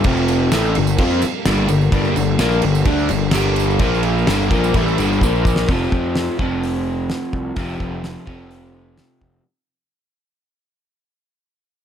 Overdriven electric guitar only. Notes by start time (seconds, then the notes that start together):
0.05 F2 C3 F3
0.52 A2 E3 A3
0.77 G2 D3
0.99 F3 C4 F4
1.23 muted overdriven electric guitar stroke
1.47 G2 D3 G3
1.69 G2 D3
1.92 G2 D3 G3
2.16 G2 D3
2.39 A#2 F3 A#3
2.63 G2 D3
2.86 D3 A3 D4
3.10 G2 D3
3.33 G2 D3 G3
3.80 A#2 F3 A#3
4.27 G2 D3 G3
4.50 A#2 F3 A#3
4.75 A2 E3 A3
4.99 G2 D3 G3
5.23 A#2 F3 A#3
5.68 F2 C3 F3
6.39 F2 C3 F3
7.56 F2 C3 F3
8.26 F2 C3 F3